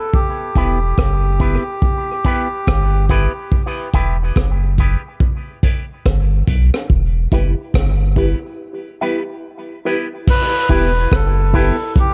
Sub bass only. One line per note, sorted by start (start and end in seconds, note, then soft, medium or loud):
0.56 0.93 E1 loud
0.99 1.58 F#1 medium
2.68 3.28 G1 loud
3.94 4.31 E1 loud
4.37 4.96 F#1 medium
6.06 6.43 G1 medium
6.48 6.70 B1 medium
6.90 7.27 E1 loud
7.32 7.55 F#1 loud
7.75 8.34 G1 medium
10.70 11.07 E1 loud
11.12 11.71 F#1 medium